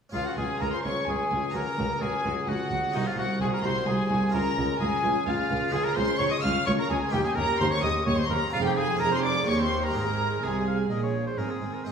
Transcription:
0.09 harpsichord C#4 F4 G#4, violin section F5
0.14 cello section C#2, harpsichord C#2, double bass section C#2, viola section F4, oboe F4, violin section F5
0.24 oboe F#4, violin section F#5
0.36 cello section C#2, harpsichord C#2, double bass section C#2, viola section F4, oboe G#4, violin section G#5
0.60 double bass section C#2, cello section C#2, harpsichord C#2, viola section F4, oboe A#4, violin section A#5
0.71 oboe C5, violin section C6
0.83 double bass section C#2, harpsichord C#2, cello section C#2, viola section F4, oboe C#5, violin section C#6
1.07 harpsichord C#2, cello section C#2, double bass section C#2, viola section F4, oboe G#4, violin section G#5
1.30 cello section C#2, double bass section C#2, harpsichord C#2, viola section F4
1.50 double bass section C#2, cello section C#2, harpsichord C#4 F#4, violin section A#5
1.54 harpsichord C#2, viola section F#4, oboe A#4
1.77 double bass section C#2, cello section C#2, harpsichord C#2, viola section F#4
2.00 harpsichord C#2, double bass section C#2, cello section C#2, viola section F#4, oboe G#4, violin section G#5
2.25 harpsichord C#2, double bass section C#2, cello section C#2, viola section F#4
2.47 double bass section C#2, cello section C#2, harpsichord C#2, viola section F#4, oboe F#4, violin section F#5
2.71 cello section C#2, harpsichord C#2, double bass section C#2, viola section F#4
2.90 cello section C2, harpsichord D#4 F#4 G#4, violin section D#5
2.94 double bass section C2, harpsichord C2, oboe D#4, viola section F#4, violin section D#5
3.07 oboe F4, violin section F5
3.17 cello section C2, double bass section C2, harpsichord C2, viola section F#4, oboe F#4, violin section F#5
3.40 cello section C2, double bass section C2, harpsichord C2, viola section F#4, oboe G#4, violin section G#5
3.53 oboe A#4, violin section A#5
3.63 cello section C2, harpsichord C2, double bass section C2, viola section F#4, oboe C5, violin section C6
3.87 cello section C2, harpsichord C2, double bass section C2, viola section F#4, oboe G#4, violin section G#5
4.10 harpsichord C2, cello section C2, double bass section C2, viola section F#4
4.29 harpsichord C#4 F4 G#4
4.34 harpsichord C#2, cello section C#2, double bass section C#2, viola section F4, oboe A#4, violin section A#5
4.57 cello section C#2, harpsichord C#2, double bass section C#2, viola section F4
4.80 cello section C#2, harpsichord C#2, double bass section C#2, viola section F4, oboe G#4, violin section G#5
5.03 cello section C#2, harpsichord C#2, double bass section C#2, viola section F4
5.26 cello section C#2, harpsichord C#2, double bass section C#2, oboe F4, viola section F4, violin section F5
5.50 harpsichord C#2, cello section C#2, double bass section C#2, viola section F4
5.68 harpsichord C#4 F4 G#4, oboe G#4
5.72 cello section C#2, harpsichord C#2, double bass section C#2, viola section F4, violin section G#5
5.85 oboe A#4, violin section A#5
5.96 harpsichord C#2, cello section C#2, double bass section C#2, viola section F4, oboe C5, violin section C6
6.18 harpsichord C#2, double bass section C#2, cello section C#2, viola section F4, oboe C#5, violin section C#6
6.30 oboe D#5, violin section D#6
6.41 cello section C#2, double bass section C#2, harpsichord C#2, viola section F4, oboe F5, violin section F6
6.66 harpsichord C#2, double bass section C#2, cello section C#2, viola section F4, oboe C#5, violin section C#6
6.79 oboe A#4, violin section A#5
6.90 cello section C#2, harpsichord C#2, double bass section C#2, viola section F4, oboe G#4, violin section G#5
7.09 harpsichord C#4 D#4 G4, oboe G4, violin section G5
7.13 cello section D#2, harpsichord D#2, double bass section D#2, viola section G4, violin section G5
7.24 oboe G#4, violin section G#5
7.35 cello section D#2, double bass section D#2, harpsichord D#2, viola section G4, oboe A#4, violin section A#5
7.58 harpsichord D#2, cello section D#2, double bass section D#2, viola section G4, oboe C5, violin section C6
7.71 oboe C#5, violin section C#6
7.82 double bass section D#2, cello section D#2, harpsichord D#2, viola section G4, oboe D#5, violin section D#6
8.05 harpsichord D#2, cello section D#2, double bass section D#2, viola section G4, oboe C#5, violin section C#6
8.17 oboe C5, violin section C6
8.22 violin section C6
8.29 harpsichord D#2, cello section D#2, double bass section D#2, viola section G4, oboe A#4, violin section A#5
8.48 harpsichord C4 G#4, violin section F5
8.53 double bass section F1, harpsichord F2, cello section F2, oboe F4, viola section G#4, violin section F5
8.64 oboe G4, violin section G5
8.75 oboe G#4, violin section G#5
8.95 harpsichord A#3 G#4 A#4
9.00 double bass section F1, harpsichord F2, cello section F2, viola section G#4, oboe A#4, violin section A#5
9.12 oboe C5, violin section C6
9.16 violin section C6
9.23 oboe D5, violin section D6
9.43 harpsichord A#3 G4 A#4, violin section C#6
9.47 double bass section D#2, harpsichord D#2, cello section D#2, viola section G4, oboe C#5, violin section C#6
9.59 oboe C5, violin section C6
9.63 violin section C6
9.82 oboe A#4, violin section A#5
9.86 harpsichord G#3, violin section A#5
9.91 harpsichord C4 D#4 G#4, violin section A#5
9.95 double bass section G#1, harpsichord G#2, cello section G#2, viola section G#4, oboe A#4, violin section A#5
10.42 double bass section C2, cello section C3, harpsichord C3, viola section G#4, oboe G#4, violin section G#5
10.67 oboe F5
10.90 double bass section A#1, cello section A#2, harpsichord A#2, oboe D#5
11.03 oboe C#5
11.27 oboe C5
11.38 double bass section G#1, cello section G#2, harpsichord G#2 G#3, viola section C4, violin section G#4 D#6, oboe A#4
11.51 oboe G#4
11.61 double bass section G#1, cello section G#2, harpsichord G#2, viola section C4, violin section G#4 D#6
11.74 oboe A#4
11.84 double bass section G#1, cello section G#2, harpsichord G#2 C4 D#4 G#4, viola section C4, violin section G#4 D#6, oboe C5

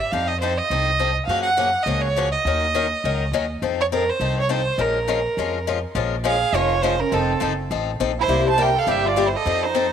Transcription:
0.00 violin E5
0.12 upright bass F2, steel-string acoustic guitar F3 C4 D#4 A4, violin F5
0.28 violin D#5
0.41 steel-string acoustic guitar F3 C4 D#4 A4, violin C5
0.58 violin D#5
0.70 upright bass C2, steel-string acoustic guitar F3 C4 D#4 A4
0.99 steel-string acoustic guitar F3 C4 D#4 A4
1.26 upright bass F#2, steel-string acoustic guitar C#3 F3 A#3 C#4 F#4, violin F5
1.43 violin F#5
1.57 steel-string acoustic guitar C#3 F3 A#3 C#4 F#4
1.83 upright bass C#2, steel-string acoustic guitar C#3 F3, violin D#5
1.87 steel-string acoustic guitar A#3 C#4 F#4
2.01 violin C#5
2.16 steel-string acoustic guitar C#3 F3 A#3 C#4 F#4
2.32 violin D#5
2.45 upright bass D#2, steel-string acoustic guitar D#3 F#3 C#4 D#4 A#4
2.74 steel-string acoustic guitar D#3 F#3 C#4 D#4 A#4
3.04 upright bass C#2, steel-string acoustic guitar D#3 F#3 C#4 D#4 A#4
3.31 upright bass D#2, steel-string acoustic guitar D#3 F#3 C#4 D#4 A#4
3.62 upright bass F2, steel-string acoustic guitar F3 C4 D#4 A4
3.81 violin C#5
3.92 steel-string acoustic guitar F3 C4 D#4 A4, violin A#4
4.09 violin C5
4.20 upright bass C2, steel-string acoustic guitar F3 C4 D#4 A4
4.40 violin C#5
4.49 steel-string acoustic guitar F3 C4 D#4 A4, violin C5
4.78 upright bass A#1, steel-string acoustic guitar F3 G#3 C#4 F4 A#4, violin A#4
5.08 steel-string acoustic guitar F3 G#3 C#4 F4 A#4
5.37 upright bass F2, steel-string acoustic guitar F3 G#3 C#4 F4 A#4
5.67 steel-string acoustic guitar F3 G#3 C#4 F4 A#4
5.95 upright bass A#1, steel-string acoustic guitar F3 G#3 C#4 F4 A#4
6.24 steel-string acoustic guitar F3 G#3 C#4 F4 A#4, violin G#4 F5
6.53 upright bass F1, steel-string acoustic guitar F3 G#3 C#4 F4 A#4, violin F4 C#5
6.82 steel-string acoustic guitar F3 G#3 C#4 F4 A#4, violin F4 C5
7.00 violin C#4 A#4
7.11 upright bass F1, steel-string acoustic guitar F3 C4 D#4 A4, violin C4 A4
7.40 upright bass F#1, steel-string acoustic guitar F3 C4 D#4 A4
7.71 upright bass A1, steel-string acoustic guitar F3 C4 D#4 A4
8.00 upright bass A#1, steel-string acoustic guitar F3 C4 D#4 A4
8.19 violin E4 C5
8.28 upright bass C2, steel-string acoustic guitar C3 G3 A#3 E4 G4
8.47 violin C5 A5
8.58 steel-string acoustic guitar C3 G3 A#3 E4 G4, violin A#4 G5
8.75 violin A4 F5
8.87 upright bass G1, steel-string acoustic guitar C3 G3 A#3 E4 G4, violin G4
8.91 violin E5
9.06 violin F4 D5
9.16 steel-string acoustic guitar C3 G3 A#3 E4 G4
9.26 violin E4 C5
9.36 violin A4 D#5
9.46 upright bass F2, steel-string acoustic guitar F3 C4 D#4 A4
9.63 violin D#4 C5
9.75 steel-string acoustic guitar F3 C4 D#4 A4

